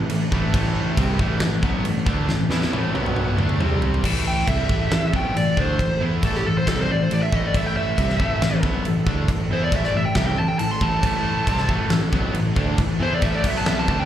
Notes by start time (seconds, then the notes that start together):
Already playing: A3 D4 B4
0.10 A1 A2 E3, crash
0.31 A1 A2 E3 A3, kick
0.53 A1 A2 E3 A3, kick, crash
0.97 C2 C3 G3 C4, kick, crash
1.19 A1 A2 E3 A3, kick
1.40 A1 A2 E3, snare, crash
1.63 B1 B2 F#3 B3, kick
1.85 A1 A2 E3, crash
2.06 D2 D3 A3 D4, kick
2.27 A1 A2 E3, snare
2.49 E2 E3 B3 E4, snare
2.62 snare
2.72 A1 A2 E3 A3, high tom
2.94 B1 B2 F#3 B3 F#4, high tom
3.06 mid tom
3.16 mid tom
3.37 D2 D3 A3 D4 E4, mid tom
3.49 mid tom
3.58 C2 C3 G3 C4 G4 D5, mid tom
3.82 floor tom
3.94 floor tom
4.02 A1 A2 E3 A3 E4 A4, kick, crash
4.28 G5
4.47 C2 C3 G3 C4 E5, kick, crash
4.68 A1 A2 E3 A3, kick
4.90 A1 A2 E3, snare, crash
5.12 B1 B2 F#3 B3, kick
5.16 G5
5.35 A1 A2 E3 D5, crash
5.57 D2 D3 A3 D4 C5, kick
5.79 A1 A2 E3, kick, crash
6.00 E2 E3 B3 E4
6.23 A1 A2 E3 A3 A4, kick, crash
6.35 G4, snare
6.45 A1 A2 E3 A4
6.58 C5
6.67 C2 C3 G3 C4 A4, kick, snare, crash
6.81 C5
6.89 A1 A2 E3 D5
7.02 C5
7.10 A1 A2 E3 D5, crash
7.23 E5
7.32 A1 A2 E3 A3 D#5, kick
7.47 D5
7.54 A1 A2 E3 A3 E5, kick, crash
7.66 G5
7.77 E5
7.97 C2 C3 G3 C4, kick, crash
8.10 snare
8.19 A1 A2 E3 A3, kick
8.42 A1 A2 E3, snare, crash
8.63 B1 B2 F#3 B3, kick
8.85 A1 A2 E3, crash
9.06 D2 D3 A3 D4, kick
9.28 A1 A2 E3, kick, crash
9.51 E2 E3 B3 E4 C5
9.64 D5
9.72 A1 A2 E3 A3, kick, crash
9.76 E5
9.84 D5, snare
9.94 A1 A2 E3 E5
10.05 G5
10.15 C2 C3 G3 C4 E5, kick, snare, crash
10.27 G5
10.37 A1 A2 E3 A5
10.48 G5
10.59 A1 A2 E3 A5, crash
10.71 C6
10.81 A1 A2 E3 A3 A5, kick
11.03 A1 A2 E3 A3 A5, kick, crash
11.46 C2 C3 G3 C4, kick, crash
11.57 snare
11.68 A1 A2 E3 A3, kick
11.90 A1 A2 E3, snare, crash
12.11 B1 B2 F#3 B3, kick
12.33 A1 A2 E3, crash
12.55 D2 D3 A3 D4, kick
12.77 A1 A2 E3, kick, crash
12.99 E2 E3 B3 E4 C5
13.14 D5
13.21 A1 A2 E3 A3 E5, kick, crash
13.35 D5
13.42 B1 B2 F#3 B3 F#4, kick, crash
13.47 E5
13.57 A5
13.66 E5, snare, crash
13.79 A5
13.87 D2 D3 A3 D4 E4 B4 A5, kick
14.00 G5